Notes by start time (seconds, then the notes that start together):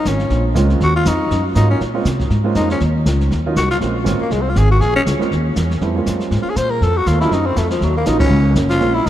0.05 G#1 C#4, kick, snare, hi-hat pedal
0.19 snare
0.30 A#1, brush sweep, kick, snare
0.54 C#2 G#3 A#3 C4 C#4 F4, kick, snare, hi-hat pedal
0.70 snare
0.80 D#2 F#4, brush sweep, kick, snare
0.96 F4
1.05 F2 D#4, kick, snare, hi-hat pedal
1.30 F#2, brush sweep, kick, snare
1.55 G#2 F#3 A#3 C#4 D#4 F4, kick, snare, hi-hat pedal
1.70 C#4
1.80 A#2, brush sweep, kick, snare
1.94 G#3 A#3 C4 C#4 F4
2.05 C3, kick, snare, hi-hat pedal
2.20 kick, snare
2.30 G#2, brush sweep, kick, snare
2.44 G#3 A#3 C4 C#4 F4
2.55 F2 D#4, kick, snare, hi-hat pedal
2.70 C#4, snare
2.80 D#2, brush sweep, kick, snare
3.06 C#2, kick, snare, hi-hat pedal
3.21 snare
3.31 D#2, brush sweep, kick, snare
3.46 F#3 A#3 C#4 D#4 F4
3.56 C2 F#4, kick, snare, hi-hat pedal
3.70 F4, snare
3.81 A#1 G#3 A#3 C4 C#4 F4, brush sweep, kick, snare
4.04 G#1 G#3 A#3 C4 C#4 F4, kick, snare, hi-hat pedal
4.19 A#3, muted upright bass stroke
4.30 C2 G#3, brush sweep, kick, snare
4.41 C4
4.49 F4
4.56 G#1 G#4, kick, snare, hi-hat pedal
4.71 F#4
4.81 A#1 G#4, brush sweep, kick, snare
4.96 C#4
5.06 C#2, kick, snare, hi-hat pedal
5.19 G#3 A#3 C4 C#4 F4, muted upright bass stroke, snare
5.31 D#2, brush sweep, kick, snare
5.56 E2, kick, snare, hi-hat pedal
5.71 snare
5.81 F2 G3 A3 B3 C4 E4, brush sweep, kick, snare
5.96 G#3 A#3 C4 C#4 F4
6.06 F#2, kick, snare, hi-hat pedal
6.20 snare
6.31 G#2, brush sweep, kick, snare
6.42 F4, muted upright bass stroke
6.50 G#4
6.56 A#2 C5, kick, snare, hi-hat pedal
6.71 A#4
6.81 F2 A4, brush sweep, kick, snare
6.97 F#4
7.06 D#2 F4, kick, snare, hi-hat pedal
7.20 F#3 A3 C4 D#4 E4 F4, snare
7.31 F#2 D#4, brush sweep, kick, snare
7.46 C4
7.56 F2 A3, kick, snare, hi-hat pedal
7.70 F3, snare
7.81 D#2 F#3, brush sweep, kick, snare
7.97 A#3
8.05 A#1 F#3 A#3 C#4 D#4 F4, kick, snare, hi-hat pedal
8.19 C#4, kick, crash
8.29 C#2, brush sweep
8.55 F#1, kick, snare, hi-hat pedal
8.70 F4, snare
8.80 A#1 G#3 A#3 C4 C#4 F4, brush sweep, kick, snare
8.94 E4
9.06 C#2 D#4, kick, hi-hat pedal